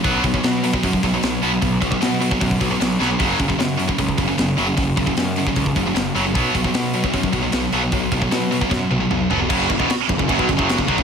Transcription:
<<
  \new Staff \with { instrumentName = "Distorted electric guitar" } { \clef bass \time 4/4 \key b \dorian \tempo 4 = 152 <b, fis b>8 <b, fis>16 <b, fis>16 <b, fis>8 <b, fis>16 <b, fis>16 <b, fis>8 <b, fis>16 <b, fis>16 <b, fis>8 <b, fis b>16 <b, fis>16 | <b, fis>8 <b, fis>16 <b, fis>16 <b, fis>8 <b, fis>16 <b, fis>16 <b, fis>8 <b, fis>16 <b, fis>16 <b, fis>8 <b, fis b>16 <b, fis>16 | <fis, cis fis>8 <fis, cis>16 <fis, cis>16 <fis, cis>8 <fis, cis>16 <fis, cis>16 <fis, cis>8 <fis, cis>16 <fis, cis>16 <fis, cis>8 <fis, cis fis>16 <fis, cis>16 | <fis, cis>8 <fis, cis>16 <fis, cis>16 <fis, cis>8 <fis, cis>16 <fis, cis>16 <fis, cis>8 <fis, cis>16 <fis, cis>16 <fis, cis>8 <fis, cis fis>16 <fis, cis>16 |
<b, fis b>8 <b, fis>16 <b, fis>16 <b, fis>8 <b, fis>16 <b, fis>16 <b, fis>8 <b, fis>16 <b, fis>16 <b, fis>8 <b, fis b>16 <b, fis>16 | <b, fis>8 <b, fis>16 <b, fis>16 <b, fis>8 <b, fis>16 <b, fis>16 <b, fis>8 <b, fis>16 <b, fis>16 <b, fis>8 <b, fis b>16 <b, fis>16 | <fis, cis fis>8 <fis, cis>16 <e, b,>16 r8 <fis, cis>16 <fis, cis>16 <fis, cis>16 <b, fis>16 <fis, cis>16 <fis, cis fis>8 <fis, cis>16 <b, fis>16 <fis, cis>16 | }
  \new Staff \with { instrumentName = "Overdriven electric guitar" } { \clef bass \time 4/4 \key b \dorian r1 | r1 | r1 | r1 |
r1 | r1 | <fis, cis fis>8 <fis, cis>16 <e, b,>16 r8 <fis, cis>16 <fis, cis>16 <fis, cis>16 <b, fis>16 <fis, cis>16 <fis, cis fis>8 <fis, cis>16 <b, fis>16 <fis, cis>16 | }
  \new Staff \with { instrumentName = "Picked electric bass" } { \clef bass \time 4/4 \key b \dorian b,,8 b,,8 b,4 fis,8 b,,8 b,,8 b,,8 | b,,8 b,,8 b,4 fis,8 b,,8 b,,8 b,,8 | fis,,8 fis,,8 fis,4 cis,8 fis,,8 fis,,8 fis,,8 | fis,,8 fis,,8 fis,4 cis,8 fis,,8 fis,,8 fis,,8 |
b,,8 b,,8 b,4 fis,8 b,,8 b,,8 b,,8 | b,,8 b,,8 b,4 fis,8 b,,8 b,,8 eis,,8 | fis,,8 fis,,16 e,,16 r8 fis,,16 fis,,16 fis,,16 b,,16 fis,,16 fis,,8 fis,,16 b,,16 fis,,16 | }
  \new DrumStaff \with { instrumentName = "Drums" } \drummode { \time 4/4 <hho bd>8 <hho bd>16 bd16 <hho sn>8 hho16 bd16 <hho bd>16 bd16 <hho bd>8 <hho sn>8 hho8 | <hho bd>8 <hho bd>16 bd16 <hho sn>8 hho16 bd16 <hho bd>16 bd16 <hho bd>8 <hho sn>8 sn8 | <hho bd>8 <hho bd>16 bd16 <hho sn>8 hho16 bd16 <hho bd>16 bd16 <hho bd>8 <hho sn>8 hho8 | <hho bd>8 <hho bd>16 bd16 <hho sn>8 hho16 bd16 <hho bd>16 bd16 <hho bd>8 <hho sn>8 hho8 |
<hho bd>8 <hho bd>16 bd16 <hho sn>8 hho16 bd16 <hho bd>16 bd16 <hho bd>8 <hho sn>8 hho8 | <hho bd>8 <hho bd>16 bd16 <hho sn>8 hho16 bd16 <bd sn>8 tommh8 toml8 tomfh8 | <cymc bd>8 <cymc bd>16 bd16 <cymc sn>8 <cymc bd>16 bd16 <cymc bd>16 bd16 <cymc bd>16 bd16 <cymc sn>16 bd16 <cymc bd>16 bd16 | }
>>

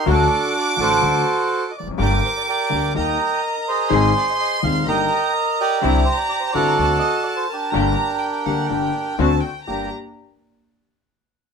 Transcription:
<<
  \new Staff \with { instrumentName = "Violin section" } { \time 4/4 \key g \minor \tempo 4 = 125 d'''2.~ d'''8 r8 | d'''2 bes''2 | c'''2 bes''2 | bes''2 a''2 |
bes''4 g''8 fis''8 g''4 a''8 g''8 | bes''8 r2. r8 | }
  \new Staff \with { instrumentName = "Bandoneon" } { \time 4/4 \key g \minor << { a'4 d''8 c''4.~ c''16. ees''32 d''8 | d''8 c''16 d''16 d''4 g''4 r8 ees''8~ | ees''8 d''16 ees''16 ees''8 f''8 g''4 r8 d''8~ | d''8 c''16 d''16 d''16 c''16 d''4 ees''8 d''16 c''16 bes'8~ |
bes'2. r4 | g'8 r2. r8 | } \\ { <d' fis'>4. <fis' a'>2 r8 | <g' bes'>4 <g' bes'>4 <bes' ees''>4. <aes' c''>8~ | <aes' c''>4. r8 <bes' ees''>4. g'8~ | g'4. <fis' a'>2 <d' g'>8~ |
<d' g'>2. r4 | r1 | } >> }
  \new Staff \with { instrumentName = "String section" } { \time 4/4 \key g \minor <a d' fis'>8 r4 <a d' fis'>8 <a d' fis'>8 r4. | <bes d' g'>8 r4 <bes d' g'>8 <bes ees' g'>8 r4. | <c' ees' aes'>8 r4 <c' ees' aes'>8 <bes ees' g'>8 r4. | <c' d' e'>8 r4 <c' d' e'>8 <c' d' fis'>8 r4. |
<bes d' g'>8 r4 <bes d' g'>8 <bes d' g'>8 r8 <c' d' fis'>8 r8 | <bes d' g'>8 r2. r8 | }
  \new Staff \with { instrumentName = "Grand piano" } { \clef bass \time 4/4 \key g \minor <d, d fis a fis'>8 r4 <a,, a, d fis a fis'>8 <d, d fis a fis'>8 r4 r32 e,32 f,32 fis,32 | <g,, g, d g bes g'>8 r4 <d, d g bes g'>8 <ees, ees g bes g'>8 r4. | <aes,, aes, ees aes c' aes'>8 r4 <ees,, ees, ees aes c' aes'>8 <g,, g, ees g bes g'>8 r4. | <c, c d g c' e'>8 r4 <g,, g, d g c' e'>8 <d, d a c' fis'>8 r4. |
<g,, g, d g bes g'>8 r4 <d, d g bes g'>8 <g,, g, d g bes g'>8 r8 <d, d a c' fis'>8 r8 | <g, bes d' g'>8 r2. r8 | }
  \new Staff \with { instrumentName = "Upright bass" } { \clef bass \time 4/4 \key g \minor d,16. r4 r32 a,,16. r32 d,16. r4 r16 e,,32 f,,32 fis,,32 | g,,16. r4 r32 d,16. r32 ees,16. r4. r32 | aes,,16. r4 r32 ees,16. r32 g,,16. r4. r32 | c,16. r4 r32 g,,16. r32 d,16. r4. r32 |
g,,16. r4 r32 d,16. r32 g,,16. r8 r32 d,16. r8 r32 | g,,8 r2. r8 | }
>>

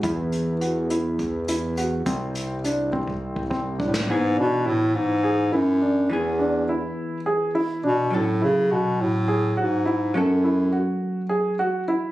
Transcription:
<<
  \new Staff \with { instrumentName = "Grand piano" } { \time 7/8 \key e \mixolydian \tempo 4 = 104 e'4 fis'8 e'4 e'8 fis'8 | c'4 d'8 c'4 c'8 d'8 | r8 d'8 e'4 gis'8 e'8 d'8 | r8 d'8 e'4 gis'8 e'8 d'8 |
r8 e'8 fis'4 gis'8 fis'8 e'8 | r8 e'8 fis'4 gis'8 fis'8 e'8 | }
  \new Staff \with { instrumentName = "Hollow-body jazz guitar" } { \time 7/8 \key e \mixolydian r2. r8 | r2. r8 | <e b gis'>2.~ <e b gis'>8 | <e b gis'>2.~ <e b gis'>8 |
<fis cis' a'>2.~ <fis cis' a'>8 | <fis cis' a'>2.~ <fis cis' a'>8 | }
  \new Staff \with { instrumentName = "Bass clarinet" } { \clef bass \time 7/8 \key e \mixolydian r2. r8 | r2. a,8 | gis,8 b,8 a,8 gis,4 fis,4 | e,4. r4. b,8 |
a,8 cis8 b,8 a,4 gis,4 | fis,4. r2 | }
  \new Staff \with { instrumentName = "Analog synth bass" } { \clef bass \time 7/8 \key e \mixolydian e,2.~ e,8 | c,2.~ c,8 | r2. r8 | r2. r8 |
r2. r8 | r2. r8 | }
  \new DrumStaff \with { instrumentName = "Drums" } \drummode { \time 7/8 <hh bd>8 hh8 hh8 hh8 <hh bd>8 hh8 hh8 | <hh bd>8 hh8 hh8 bd16 bd8 bd16 bd8 bd16 sn16 | r4. r4 r4 | r4. r4 r4 |
r4. r4 r4 | r4. r4 r4 | }
>>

